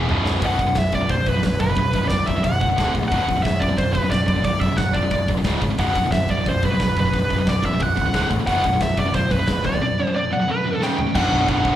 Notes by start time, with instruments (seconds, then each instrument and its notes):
0.08 picked electric bass B0, distorted electric guitar B1 F#2 B2, floor tom
0.26 snare
0.41 picked electric bass B0, distorted electric guitar B1 F#2 B2, kick, open hi-hat
0.46 lead electric guitar F#5
0.59 picked electric bass B0, distorted electric guitar B1 F#2, kick, open hi-hat
0.67 distorted electric guitar B1 F#2
0.75 picked electric bass B0, distorted electric guitar B1 F#2, kick, snare, open hi-hat
0.79 lead electric guitar E5
0.92 picked electric bass B0, distorted electric guitar B1 F#2, lead electric guitar D5, kick, open hi-hat
1.00 distorted electric guitar B1 F#2
1.09 picked electric bass B0, distorted electric guitar B1 F#2, lead electric guitar C5, kick, open hi-hat
1.26 picked electric bass B0, distorted electric guitar B1 F#2, lead electric guitar B4, kick, open hi-hat
1.34 distorted electric guitar B1 F#2
1.43 picked electric bass B0, distorted electric guitar B1 F#2, kick, snare, open hi-hat
1.60 picked electric bass F#1, distorted electric guitar B1 F#2, lead electric guitar B4, kick, open hi-hat
1.69 distorted electric guitar B1 F#2
1.75 picked electric bass B0, distorted electric guitar B1 F#2, kick, open hi-hat
1.93 picked electric bass B0, distorted electric guitar B1 F#2, kick, open hi-hat
2.03 distorted electric guitar B1 F#2
2.08 picked electric bass B0, distorted electric guitar B1, lead electric guitar D5, kick, snare, open hi-hat
2.13 distorted electric guitar F#2
2.26 picked electric bass B0, distorted electric guitar B1 F#2, lead electric guitar E5, kick, open hi-hat
2.36 distorted electric guitar B1 F#2
2.44 picked electric bass B0, distorted electric guitar B1 F#2, lead electric guitar F#5, kick, open hi-hat
2.61 picked electric bass B0, distorted electric guitar B1 F#2, kick, open hi-hat
2.69 distorted electric guitar B1 F#2
2.78 picked electric bass D1, distorted electric guitar D2 A2 D3, kick, snare, open hi-hat
2.95 picked electric bass A#1, distorted electric guitar D2 A2, kick, open hi-hat
3.03 distorted electric guitar D2 A2
3.08 picked electric bass B0, distorted electric guitar B1 F#2 B2, lead electric guitar F#5, kick, open hi-hat
3.27 picked electric bass B0, distorted electric guitar B1 F#2, kick, open hi-hat
3.36 distorted electric guitar B1 F#2
3.43 picked electric bass B0, distorted electric guitar B1 F#2, lead electric guitar E5, kick, snare, open hi-hat
3.60 picked electric bass B0, distorted electric guitar B1 F#2, lead electric guitar D5, kick, open hi-hat
3.70 distorted electric guitar B1 F#2
3.78 picked electric bass B0, distorted electric guitar B1 F#2, lead electric guitar C5, kick, open hi-hat
3.93 picked electric bass B0, distorted electric guitar B1 F#2, lead electric guitar B4, kick, open hi-hat
4.04 distorted electric guitar B1 F#2
4.11 picked electric bass B0, distorted electric guitar B1 F#2, lead electric guitar D5, kick, snare, open hi-hat
4.28 picked electric bass F#1, distorted electric guitar B1 F#2, kick, open hi-hat
4.38 distorted electric guitar B1 F#2
4.42 picked electric bass B0, distorted electric guitar B1, lead electric guitar D5, kick, open hi-hat
4.47 distorted electric guitar B1 F#2
4.60 picked electric bass B0, distorted electric guitar B1 F#2, lead electric guitar E5, kick, open hi-hat
4.72 distorted electric guitar B1 F#2
4.76 picked electric bass B0, distorted electric guitar B1 F#2, lead electric guitar F#5, kick, snare, open hi-hat
4.80 distorted electric guitar B1 F#2
4.94 picked electric bass B0, distorted electric guitar B1 F#2, lead electric guitar D5, kick, open hi-hat
5.04 distorted electric guitar B1 F#2
5.11 picked electric bass B0, distorted electric guitar B1 F#2, kick, open hi-hat
5.28 picked electric bass D1, distorted electric guitar B1 F#2, kick, open hi-hat
5.37 distorted electric guitar B1 F#2
5.44 picked electric bass C#1, distorted electric guitar C#2 G#2 C#3, kick, snare, open hi-hat
5.61 picked electric bass G#1, distorted electric guitar C#2 G#2, kick, open hi-hat
5.71 distorted electric guitar C#2 G#2
5.79 picked electric bass B0, distorted electric guitar B1 F#2 B2, lead electric guitar F#5, kick, open hi-hat
5.95 picked electric bass B0, distorted electric guitar B1 F#2, kick, open hi-hat
6.06 distorted electric guitar B1 F#2
6.12 picked electric bass B0, distorted electric guitar B1 F#2, lead electric guitar E5, kick, snare, open hi-hat
6.28 picked electric bass B0, lead electric guitar D5, kick, open hi-hat
6.32 distorted electric guitar B1 F#2
6.41 distorted electric guitar B1 F#2
6.46 picked electric bass B0, distorted electric guitar B1 F#2, lead electric guitar C5, kick, open hi-hat
6.62 picked electric bass B0, distorted electric guitar B1 F#2, lead electric guitar B4, kick, open hi-hat
6.74 distorted electric guitar B1 F#2
6.80 picked electric bass B0, distorted electric guitar B1 F#2, kick, snare, open hi-hat
6.97 picked electric bass F#1, distorted electric guitar B1 F#2, lead electric guitar B4, kick, open hi-hat
7.07 distorted electric guitar B1 F#2
7.14 picked electric bass B0, distorted electric guitar B1 F#2, kick, open hi-hat
7.30 picked electric bass B0, distorted electric guitar B1 F#2, kick, open hi-hat
7.40 distorted electric guitar B1 F#2
7.47 picked electric bass B0, distorted electric guitar B1 F#2, lead electric guitar D5, kick, snare, open hi-hat
7.63 picked electric bass B0, distorted electric guitar B1 F#2, lead electric guitar E5, kick, open hi-hat
7.73 distorted electric guitar B1 F#2
7.80 picked electric bass B0, distorted electric guitar B1 F#2, lead electric guitar F#5, kick, open hi-hat
7.97 picked electric bass C#1, distorted electric guitar B1 F#2, kick, open hi-hat
8.06 distorted electric guitar B1 F#2
8.14 picked electric bass D1, distorted electric guitar D2 A2 D3, kick, snare, open hi-hat
8.30 picked electric bass A1, distorted electric guitar D2 A2, kick, open hi-hat
8.39 distorted electric guitar D2 A2
8.47 picked electric bass B0, distorted electric guitar B1 F#2 B2, lead electric guitar F#5, kick, open hi-hat
8.64 picked electric bass B0, distorted electric guitar B1 F#2, kick, open hi-hat
8.73 distorted electric guitar B1 F#2
8.81 picked electric bass B0, distorted electric guitar B1 F#2, lead electric guitar E5, kick, snare, open hi-hat
8.97 picked electric bass B0, distorted electric guitar B1 F#2, lead electric guitar D5, kick, open hi-hat
9.06 distorted electric guitar B1 F#2
9.13 picked electric bass B0, distorted electric guitar B1 F#2, lead electric guitar C5, kick, open hi-hat
9.31 picked electric bass B0, distorted electric guitar B1 F#2, lead electric guitar B4, kick, open hi-hat
9.39 distorted electric guitar B1 F#2
9.47 picked electric bass B0, distorted electric guitar B1 F#2, kick, snare, open hi-hat
9.64 picked electric bass C1, distorted electric guitar B1 F#2, lead electric guitar D5, kick, open hi-hat
9.74 distorted electric guitar B1 F#2
9.83 distorted electric guitar B1 F#2
9.99 distorted electric guitar B1 F#2
10.07 distorted electric guitar B1 F#2
10.16 distorted electric guitar B1 F#2, lead electric guitar D5
10.32 distorted electric guitar B1 F#2, lead electric guitar F#5
10.42 distorted electric guitar B1 F#2
10.49 distorted electric guitar B1 F#2, lead electric guitar B4
10.67 distorted electric guitar B1 F#2
10.74 distorted electric guitar B1 F#2
10.82 distorted electric guitar C#2 G#2 C#3, lead electric guitar C#4 G5, snare
10.98 distorted electric guitar C#2 G#2, floor tom
11.07 distorted electric guitar C#2 G#2
11.14 picked electric bass B0, distorted electric guitar B1 F#2 B2, lead electric guitar D4 F#5, kick, crash
11.32 picked electric bass B0, distorted electric guitar B1 F#2 B2
11.48 picked electric bass B0, distorted electric guitar B1 F#2 B2, lead electric guitar D4 F#5, kick, crash
11.64 picked electric bass B0, distorted electric guitar B1 F#2 B2, kick